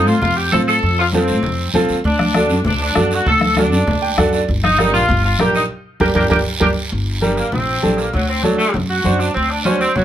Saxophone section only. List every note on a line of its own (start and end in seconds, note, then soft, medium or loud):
0.07 0.21 F4 medium
0.22 0.36 F4 loud
0.37 0.52 G4 medium
0.52 0.59 A4 loud
0.68 0.96 A4 loud
0.99 1.06 F4 loud
1.15 1.71 C4 medium
2.05 2.62 D4 medium
2.67 2.81 D4 medium
2.82 3.10 D4 medium
3.13 3.27 F#4 medium
3.28 3.56 A4 loud
3.59 4.30 D4 medium
4.64 4.92 D#4 loud
4.94 5.22 F4 loud
5.24 5.38 F4 medium
5.40 5.54 G4 medium
5.56 5.62 D#4 medium
6.01 6.08 A#3 medium
6.01 6.08 D4 medium
6.01 6.08 G4 medium
6.16 6.23 A#3 loud
6.16 6.23 D4 loud
6.16 6.24 G4 medium
6.31 6.38 A#3 medium
6.31 6.39 D4 medium
6.31 6.38 G4 medium
6.61 6.69 A#3 medium
6.61 6.69 D4 loud
6.61 6.69 G4 medium
7.21 7.36 G3 medium
7.37 7.52 A#3 medium
7.52 7.97 C4 medium
7.98 8.13 A#3 medium
8.14 8.28 F#3 medium
8.28 8.43 C4 medium
8.44 8.59 F#3 medium
8.59 8.74 A3 medium
8.90 9.19 F#4 medium
9.19 9.35 D4 medium
9.35 9.50 C4 medium
9.50 9.65 D4 medium
9.65 9.80 C#4 medium
9.80 9.96 C4 medium
9.95 10.04 F#3 medium